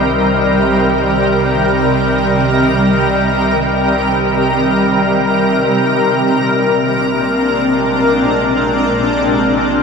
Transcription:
Already playing: sub bass C2, ambient pad C3 D#3 G3 A#4, synth drone C3
5.71 sub bass A#1, ambient pad A#2
5.91 ambient pad G#3 C4
6.07 ambient pad D4

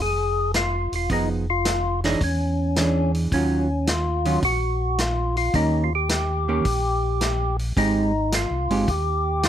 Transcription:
0.00 tonewheel organ F1 G#4
0.54 tonewheel organ F4, snare, closed hi-hat
0.92 tonewheel organ E1 F4, open hi-hat
1.09 tonewheel organ F1 D#4, hollow-body jazz guitar F3 B3 D#4 G#4, kick, open hi-hat
1.50 tonewheel organ F4
1.65 snare, closed hi-hat
2.04 hollow-body jazz guitar E3 D4 G#4 C#5, tonewheel organ D#4, snare, open hi-hat
2.21 tonewheel organ E2 C#4, kick, open hi-hat
2.76 hollow-body jazz guitar E3 D4 G#4 C#5, snare, closed hi-hat
3.14 open hi-hat
3.31 tonewheel organ D#2 C#4, hollow-body jazz guitar D#3 F#3 C#4 F4, kick, open hi-hat
3.87 tonewheel organ F4, snare, closed hi-hat
4.25 hollow-body jazz guitar D#3 F#3 C#4 F4, open hi-hat
4.42 tonewheel organ A#1 F#4, kick, open hi-hat
4.98 tonewheel organ F4, snare, closed hi-hat
5.37 tonewheel organ F4, open hi-hat
5.53 tonewheel organ D#2 D#4, hollow-body jazz guitar D#3 A#3 C#4 G4, kick, open hi-hat
5.84 tonewheel organ F4
5.95 tonewheel organ G4
6.09 snare, closed hi-hat
6.48 hollow-body jazz guitar D#3 A#3 C#4 G4
6.65 tonewheel organ A#1, kick, open hi-hat
7.21 snare, closed hi-hat
7.59 open hi-hat
7.76 tonewheel organ G#1 D#4, hollow-body jazz guitar G#3 C4 D#4 G4, kick, open hi-hat
8.32 tonewheel organ F4, snare, closed hi-hat
8.51 tonewheel organ C2
8.69 tonewheel organ G1, hollow-body jazz guitar G#3 C4 D#4 G4, open hi-hat
8.88 tonewheel organ D#2 G4, kick, open hi-hat
9.43 tonewheel organ F4, snare, closed hi-hat

